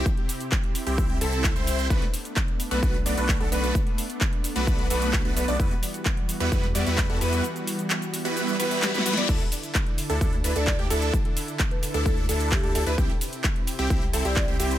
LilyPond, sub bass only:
\new Staff \with { instrumentName = "Sub bass" } { \clef bass \time 4/4 \key e \minor \tempo 4 = 130 r4. r16 c,8. c,8. c,8. | b,,16 r4. b,,16 b,,8 b,,16 b,,8 b,,16 b,,8 | r4. r16 b,,8. b,,8. b,,16 b,,16 b,,16 | e,16 r4. e,16 e,8 e,16 e,8 e,16 e,8 |
r1 | d,16 r4. d,16 d,8 d,16 d,8 d,16 d,8 | r4. r16 d,8. d,8. d,16 d,16 d,16 | c,16 r4. c,16 c,8 c,16 c,8 c,16 c,8 | }